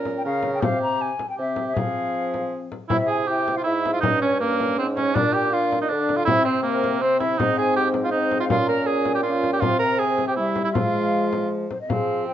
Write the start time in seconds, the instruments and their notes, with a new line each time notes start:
Already playing: bassoon A#2, trombone C#4, cor anglais A#4
0.05 frame drum
0.18 flute G5
0.25 bassoon C#3, trombone C#4, cor anglais A#4, flute F5
0.43 frame drum
0.54 flute G5
0.61 bassoon C3, trombone C4, cor anglais G4, flute F5, frame drum
0.83 flute A#5
1.01 flute G#5
1.19 frame drum
1.30 flute G5
1.37 bassoon C3, trombone C4, cor anglais G4, flute E5
1.56 frame drum
1.68 flute E5
1.74 bassoon F3, trombone C4, cor anglais G#4, flute F5, frame drum
2.34 frame drum
2.72 frame drum
2.89 bassoon C3, cor anglais E4, trombone E4, flute E5, frame drum
3.07 cor anglais G#4, flute G#5
3.27 trombone E4, cor anglais G4, flute G5
3.48 frame drum
3.57 cor anglais F4, flute F5
3.64 bassoon G#2, cor anglais E4, trombone E4, flute E5
3.85 trombone E4, frame drum
3.93 cor anglais F4, flute F5
4.01 bassoon G2, trombone C#4, cor anglais D#4, flute D#5, frame drum
4.22 cor anglais C#4, flute C#5
4.40 cor anglais A#3, trombone C#4, flute A#4
4.60 frame drum
4.79 bassoon G#2, cor anglais C4, flute C5
4.97 cor anglais C#4, flute C#5, frame drum
5.15 bassoon A#2, trombone D4, cor anglais D4, flute D5, frame drum
5.34 cor anglais G4, flute G5
5.52 trombone D4, cor anglais F4, flute F5
5.72 frame drum
5.82 cor anglais D#4, flute D#5
5.89 bassoon D3, cor anglais D4, trombone D4, flute D5
6.09 frame drum
6.16 cor anglais F4, flute F5
6.25 bassoon C3, trombone C4, cor anglais E4, flute E5, frame drum
6.45 cor anglais C4, flute C5
6.63 cor anglais A#3, flute A#4
6.84 frame drum
7.01 trombone C4, cor anglais C4, flute C5
7.20 cor anglais E4, flute E5, frame drum
7.39 bassoon G#2, trombone C4, cor anglais D#4, flute D#5, frame drum
7.58 cor anglais G#4, flute G#5
7.76 cor anglais G4, flute G5
7.94 frame drum
8.04 cor anglais F4, flute F5
8.11 trombone C4, cor anglais D#4, flute D#5
8.31 frame drum
8.40 cor anglais F4, flute F5
8.50 bassoon A#2, trombone C#4, cor anglais F4, flute F5, frame drum
8.67 cor anglais A#4, flute A#5
8.86 cor anglais G#4, flute G#5
9.05 frame drum
9.15 cor anglais G4, flute G5
9.23 trombone C#4, cor anglais F4, flute F5
9.44 frame drum
9.53 cor anglais G4, flute G5
9.61 bassoon C3, trombone C4, cor anglais F4, flute F5, frame drum
9.79 cor anglais A#4, flute A#5
9.99 cor anglais G#4, flute G#5
10.18 frame drum
10.28 cor anglais G4, flute G5
10.36 trombone G3, cor anglais E4, flute E5
10.56 frame drum
10.65 cor anglais E4, flute E5
10.74 bassoon F3, trombone G#3, cor anglais F4, flute F5, frame drum
11.33 frame drum
11.71 flute C5, frame drum
11.81 flute D#5
11.88 bassoon F3, cor anglais C4, trombone G#4, flute F5, frame drum
12.27 trombone C4, flute G5